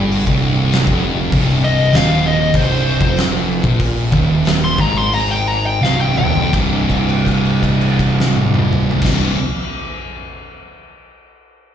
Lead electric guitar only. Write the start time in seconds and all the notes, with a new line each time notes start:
1.64 D#5
1.96 F5
2.27 D#5
2.57 C5
4.64 C6
4.81 A#5
4.97 C6
5.14 A#5
5.31 G5
5.48 A#5
5.66 G5
5.83 F5
6.01 G5
6.18 G5